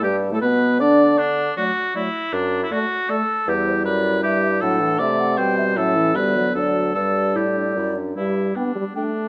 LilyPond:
<<
  \new Staff \with { instrumentName = "Flute" } { \time 3/4 \key g \major \tempo 4 = 156 g'8. a'16 b'4 d''4 | r4 d''4 d''4 | r4 d''4 d''4 | b'8 c''8 d''4 e''8 e''8 |
fis''4 e''8 fis''8 g''8 e''8 | e''4 d''4 d''4 | d''2~ d''8 r8 | r4 g''4 g''4 | }
  \new Staff \with { instrumentName = "Oboe" } { \time 3/4 \key g \major g'8. a'16 b'4 d''4 | d'4 fis'4 e'4 | d'8. e'16 fis'4 a'4 | g'4 b'4 g'4 |
a'4 d''4 c''4 | a'4 b'4 a'4 | a'4 g'4. r8 | e'4 d'4 d'4 | }
  \new Staff \with { instrumentName = "Clarinet" } { \time 3/4 \key g \major g8. a16 b4 d'4 | r4 a4 a4 | r4 a4 a4 | e'2. |
d'4 c'2 | cis'4 b4 d'4 | d'4 e'8 d'8 e'8 d'8 | r4 d'4 d'4 | }
  \new Staff \with { instrumentName = "French horn" } { \clef bass \time 3/4 \key g \major g8. a16 b4 d'4 | r4 fis4 fis4 | r4 a4 a4 | g2 g4 |
fis8 e8 a4 g4 | fis8 e8 g8 fis8 fis4 | g2~ g8 r8 | g4 b8 g8 a4 | }
  \new Staff \with { instrumentName = "Bassoon" } { \clef bass \time 3/4 \key g \major g,8. a,16 b,4 d4 | d4 r2 | fis,4 r2 | e,4 fis,4 g,4 |
a,4 c4 b,4 | a,4 d,4 d,4 | g,4 a,4 fis,4 | g,4 r2 | }
>>